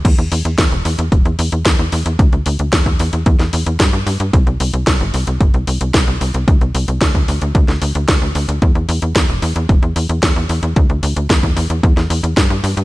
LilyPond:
<<
  \new Staff \with { instrumentName = "Analog synth bass" } { \clef bass \time 4/4 \key e \minor \tempo 4 = 112 e,16 e,16 e,16 e,16 e,16 e,,16 e,16 e,16 e,,16 e,16 e,16 e,16 e,16 e,16 e,16 e,16 | d,16 d,16 d,16 d,16 e,16 e,16 e,16 e,16 e,16 e,16 e,16 e,16 g,16 g,16 g,16 g,16 | c,16 c,16 c,16 c,16 c,16 g,,16 c,16 c,16 g,,16 c,16 c,16 c,16 c,16 c,16 c,16 c,16 | d,16 c,16 c,16 c,16 d,16 d,16 d,16 d,16 d,16 d,16 d,16 d,16 d,16 d,16 d,16 d,16 |
e,16 e,16 e,16 e,16 e,16 e,,16 e,16 e,16 e,,16 e,16 e,16 e,16 e,16 e,16 e,16 e,16 | d,16 d,16 d,16 d,16 e,16 e,16 e,16 e,16 e,16 e,16 e,16 e,16 g,16 g,16 g,16 g,16 | }
  \new DrumStaff \with { instrumentName = "Drums" } \drummode { \time 4/4 <cymc hh bd>16 hh16 hho16 hh16 <hh bd sn>16 hh16 hho16 hh16 <hh bd>16 hh16 hho16 hh16 <hh bd sn>16 hh16 hho16 hh16 | <hh bd>16 hh16 hho16 hh16 <hh bd sn>16 <hh bd>16 hho16 hh16 <hh bd>16 <hh sn>16 hho16 hh16 <hh bd sn>16 hh16 hho16 hh16 | <hh bd>16 hh16 hho16 hh16 <hh bd sn>16 hh16 hho16 hh16 <hh bd>16 hh16 hho16 hh16 <hh bd sn>16 hh16 hho16 hh16 | <hh bd>16 hh16 hho16 hh16 <hh bd sn>16 <hh bd>16 hho16 hh16 <hh bd>16 <hh sn>16 hho16 hh16 <hh bd sn>16 hh16 hho16 hh16 |
<hh bd>16 hh16 hho16 hh16 <hh bd sn>16 hh16 hho16 hh16 <hh bd>16 hh16 hho16 hh16 <hh bd sn>16 hh16 hho16 hh16 | <hh bd>16 hh16 hho16 hh16 <hh bd sn>16 <hh bd>16 hho16 hh16 <hh bd>16 <hh sn>16 hho16 hh16 <hh bd sn>16 hh16 hho16 hh16 | }
>>